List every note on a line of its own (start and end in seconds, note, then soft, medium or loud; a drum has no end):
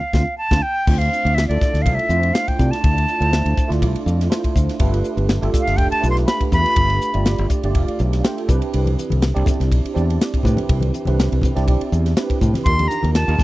0.00 0.37 F5 medium
0.13 0.24 D2 medium
0.13 0.22 C4 medium
0.13 0.22 D4 medium
0.13 0.22 F4 medium
0.13 kick medium
0.13 snare medium
0.38 0.64 A5 medium
0.51 0.60 D2 medium
0.51 0.59 C4 medium
0.51 0.59 D4 medium
0.51 0.59 F4 medium
0.51 kick medium
0.51 snare medium
0.62 0.92 G5 loud
0.87 1.08 D2 medium
0.87 1.47 A3 medium
0.87 1.46 C4 medium
0.87 1.46 D4 medium
0.87 1.47 F4 medium
0.87 1.47 C5 medium
0.87 kick loud
0.87 crash medium
0.92 1.00 G5 medium
0.98 1.36 F5 medium
0.98 ride medium
1.13 hi-hat pedal medium
1.25 1.46 D2 medium
1.25 ride medium
1.35 1.47 E5 medium
1.35 snare medium
1.35 ride medium
1.48 1.59 D2 medium
1.48 2.07 A3 medium
1.48 2.07 D4 medium
1.48 2.07 E4 medium
1.48 2.07 F4 medium
1.48 2.08 A4 medium
1.48 1.83 D5 medium
1.48 ride medium
1.61 kick medium
1.61 snare soft
1.61 hi-hat pedal medium
1.74 1.87 D2 medium
1.74 snare soft
1.74 ride soft
1.82 1.97 C2 medium
1.82 1.96 F5 medium
1.82 kick medium
1.86 ride medium
1.95 2.35 E5 medium
1.95 muted fingered electric bass stroke soft
1.99 ride soft
2.09 2.30 F2 medium
2.09 2.56 A3 medium
2.09 2.57 D4 medium
2.09 2.57 E4 medium
2.09 2.57 F4 medium
2.09 2.57 C5 medium
2.09 hi-hat pedal medium
2.23 ride soft
2.34 2.49 F5 medium
2.34 snare loud
2.34 ride medium
2.48 2.72 G5 medium
2.48 kick medium
2.48 ride medium
2.58 2.70 C3 medium
2.58 3.18 A3 medium
2.58 3.17 D4 medium
2.58 3.17 E4 medium
2.58 3.18 F4 medium
2.58 3.18 D5 medium
2.58 kick medium
2.58 hi-hat pedal medium
2.71 3.70 A5 medium
2.71 snare soft
2.71 ride medium
2.84 3.05 D2 medium
2.84 kick loud
2.84 ride medium
2.98 ride medium
3.08 hi-hat pedal medium
3.20 3.42 D2 medium
3.20 3.67 A3 medium
3.20 3.67 D4 medium
3.20 3.67 E4 medium
3.20 3.67 F4 medium
3.20 3.67 C5 medium
3.20 ride medium
3.33 snare medium
3.33 ride medium
3.45 3.55 D2 medium
3.45 ride medium
3.57 muted fingered electric bass stroke soft
3.57 kick medium
3.57 hi-hat pedal medium
3.68 3.84 D2 medium
3.68 4.27 A3 medium
3.68 4.27 D4 medium
3.68 4.27 E4 medium
3.68 4.27 F4 medium
3.68 4.27 D5 medium
3.68 ride medium
3.72 snare soft
3.82 3.93 C2 medium
3.82 kick medium
3.82 ride medium
3.95 muted fingered electric bass stroke soft
3.95 ride medium
4.06 4.27 F2 medium
4.06 hi-hat pedal medium
4.21 snare soft
4.21 ride medium
4.29 4.77 A3 medium
4.29 4.77 D4 medium
4.29 4.77 E4 medium
4.29 4.77 F4 medium
4.29 4.77 C5 medium
4.29 snare medium
4.29 ride medium
4.44 kick medium
4.44 ride medium
4.56 4.67 D2 medium
4.56 kick medium
4.56 hi-hat pedal medium
4.69 snare soft
4.69 ride medium
4.79 5.01 G1 medium
4.79 5.38 A3 medium
4.79 5.39 D4 medium
4.79 5.39 F4 medium
4.79 5.39 G4 medium
4.79 5.39 B4 medium
4.79 kick medium
4.79 ride medium
4.94 ride medium
5.04 hi-hat pedal medium
5.17 5.38 G1 medium
5.17 ride soft
5.29 snare medium
5.29 ride medium
5.41 5.52 G1 medium
5.41 5.99 A3 medium
5.41 5.99 D4 medium
5.41 5.99 F4 medium
5.41 5.99 G4 medium
5.41 5.99 A4 loud
5.41 ride medium
5.54 kick medium
5.54 snare soft
5.54 hi-hat pedal medium
5.61 5.78 F5 medium
5.67 5.78 G1 medium
5.67 snare soft
5.67 ride medium
5.77 5.90 F1 medium
5.77 5.91 G5 loud
5.77 kick medium
5.77 ride medium
5.91 6.08 A5 medium
5.91 muted fingered electric bass stroke soft
5.91 ride medium
6.00 6.24 B1 medium
6.00 6.48 A3 medium
6.00 6.48 D4 medium
6.00 6.49 F4 medium
6.00 6.49 G4 medium
6.00 6.49 B4 medium
6.00 hi-hat pedal medium
6.10 6.16 C6 medium
6.17 snare soft
6.17 ride soft
6.27 6.42 B5 medium
6.27 snare loud
6.27 ride medium
6.41 kick medium
6.41 ride medium
6.51 6.63 E2 medium
6.51 7.10 A3 medium
6.51 7.10 D4 medium
6.51 7.10 F4 medium
6.51 7.11 G4 medium
6.51 7.11 B4 medium
6.51 7.47 B5 loud
6.51 kick medium
6.51 hi-hat pedal medium
6.66 ride medium
6.76 6.97 G1 loud
6.76 kick loud
6.76 ride medium
6.90 ride soft
7.01 hi-hat pedal medium
7.13 7.35 G1 medium
7.13 7.60 A3 medium
7.13 7.60 D4 medium
7.13 7.60 F4 medium
7.13 7.61 G4 medium
7.13 7.49 D5 medium
7.13 ride medium
7.26 snare loud
7.26 ride medium
7.38 7.48 G1 medium
7.38 ride medium
7.50 7.63 D5 medium
7.50 kick medium
7.50 hi-hat pedal medium
7.63 7.75 G1 medium
7.63 8.21 A3 medium
7.63 8.21 D4 medium
7.63 8.21 F4 medium
7.63 8.21 G4 medium
7.63 8.21 D5 medium
7.63 ride soft
7.75 7.86 F1 medium
7.75 8.21 F5 medium
7.75 kick medium
7.75 ride medium
7.88 ride medium
7.99 8.20 B1 medium
7.99 hi-hat pedal medium
8.13 snare soft
8.13 ride medium
8.24 8.49 A3 medium
8.24 8.46 D4 medium
8.24 8.49 F4 medium
8.24 8.47 G4 medium
8.24 8.49 A4 medium
8.24 8.69 G5 medium
8.24 snare loud
8.24 ride medium
8.38 ride soft
8.48 8.60 C2 medium
8.48 9.30 C4 medium
8.48 9.30 D4 medium
8.48 9.30 E4 medium
8.48 9.30 G4 medium
8.48 9.30 B4 medium
8.48 kick medium
8.48 hi-hat pedal medium
8.62 ride medium
8.74 8.94 C2 medium
8.74 ride medium
8.86 ride medium
8.86 high conga medium
8.98 hi-hat pedal medium
9.10 9.32 C2 medium
9.10 ride medium
9.10 high conga medium
9.22 snare loud
9.22 ride medium
9.34 9.45 C2 medium
9.34 9.92 C4 medium
9.34 9.92 D4 medium
9.34 9.92 E4 medium
9.34 9.92 G4 medium
9.34 9.92 D5 medium
9.34 ride medium
9.46 kick medium
9.46 snare soft
9.46 hi-hat pedal medium
9.46 high conga medium
9.46 low conga medium
9.60 9.72 C2 medium
9.60 snare soft
9.60 ride medium
9.72 9.83 B1 medium
9.72 kick medium
9.72 ride medium
9.85 muted fingered electric bass stroke soft
9.85 ride medium
9.94 10.17 E2 medium
9.94 10.41 C4 medium
9.94 10.42 D4 medium
9.94 10.42 E4 medium
9.94 10.42 G4 medium
9.94 10.42 D5 medium
9.94 hi-hat pedal medium
10.10 ride medium
10.21 snare loud
10.21 ride medium
10.34 kick medium
10.34 ride soft
10.43 10.56 A2 medium
10.43 11.03 C4 medium
10.43 11.04 D4 medium
10.43 11.03 E4 medium
10.43 11.03 G4 medium
10.43 11.04 B4 medium
10.43 kick medium
10.43 hi-hat pedal medium
10.43 low conga medium
10.57 ride medium
10.57 high conga medium
10.69 10.90 C2 medium
10.69 kick loud
10.69 ride medium
10.81 ride medium
10.81 high conga medium
10.94 hi-hat pedal medium
11.05 11.28 C2 medium
11.05 11.53 C4 medium
11.05 11.53 D4 medium
11.05 11.54 E4 medium
11.05 11.53 G4 medium
11.05 11.54 B4 medium
11.05 ride medium
11.05 high conga medium
11.20 snare loud
11.20 ride medium
11.32 11.41 C2 medium
11.32 ride medium
11.41 kick medium
11.41 hi-hat pedal medium
11.41 high conga medium
11.41 low conga medium
11.55 11.67 C2 medium
11.55 12.13 C4 medium
11.55 12.13 D4 medium
11.55 12.13 E4 medium
11.55 12.13 G4 medium
11.55 12.14 D5 medium
11.55 snare soft
11.55 ride soft
11.67 11.79 B1 loud
11.67 kick medium
11.67 ride medium
11.81 muted fingered electric bass stroke soft
11.81 ride medium
11.92 12.13 E2 medium
11.92 hi-hat pedal medium
12.06 snare soft
12.06 ride medium
12.17 12.64 C4 medium
12.17 12.64 D4 medium
12.17 12.64 E4 medium
12.17 12.64 G4 medium
12.17 12.64 B4 medium
12.17 snare loud
12.17 ride medium
12.30 kick medium
12.30 ride medium
12.41 12.52 A2 medium
12.41 kick medium
12.41 hi-hat pedal medium
12.41 low conga medium
12.54 snare soft
12.54 ride medium
12.54 high conga medium
12.64 12.86 D#2 medium
12.64 13.25 D4 medium
12.64 13.25 D#4 medium
12.64 13.25 F4 medium
12.64 13.25 G4 medium
12.64 13.25 A#4 medium
12.64 12.89 C6 loud
12.64 kick loud
12.64 ride medium
12.79 ride medium
12.79 high conga medium
12.88 13.14 A#5 medium
12.88 hi-hat pedal medium
13.03 13.24 D#2 medium
13.03 ride medium
13.03 high conga medium
13.14 13.44 A5 medium
13.14 snare loud
13.14 ride medium
13.27 13.38 D#2 medium
13.27 13.44 D4 medium
13.27 13.44 D#4 medium
13.27 13.44 F4 medium
13.27 13.44 G4 medium
13.27 13.44 A#4 medium
13.27 ride medium
13.39 kick medium
13.39 snare soft
13.39 hi-hat pedal medium
13.39 high conga medium
13.39 low conga medium